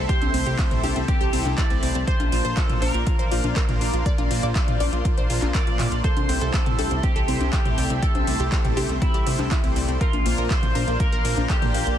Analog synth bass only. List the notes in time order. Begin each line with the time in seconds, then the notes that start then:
0.22 C2
0.34 C2
0.46 C2
0.71 C2
0.83 C2
0.96 C2
1.21 C2
1.33 C2
1.46 C2
1.70 C2
1.83 C2
1.95 C2
2.20 A#1
2.32 A#1
2.45 A#1
2.69 A#1
2.82 A#1
2.94 A#1
3.19 A#1
3.31 A#1
3.44 A#1
3.69 A#1
3.81 A#1
3.93 A#1
4.18 A#1
4.31 A#1
4.43 A#1
4.68 A#1
4.80 A#1
4.93 A#1
5.17 A#1
5.30 A#1
5.42 A#1
5.67 A#1
5.79 A#2
5.92 A#1
6.17 C2
6.29 C2
6.41 C2
6.66 C2
6.79 C2
6.91 C2
7.16 C2
7.28 C2
7.41 C2
7.65 C2
7.78 C2
7.90 C2
8.15 C2
8.27 C2
8.40 C2
8.65 C2
8.77 C2
8.89 C2
9.14 C2
9.27 C2
9.39 C2
9.64 C2
9.76 C2
9.89 C2
10.13 A#1
10.26 A#1
10.38 A#1
10.63 A#1
10.75 A#1
10.88 A#1
11.12 A#1
11.25 A#1
11.37 A#1
11.62 A#1
11.74 A#1
11.87 A#1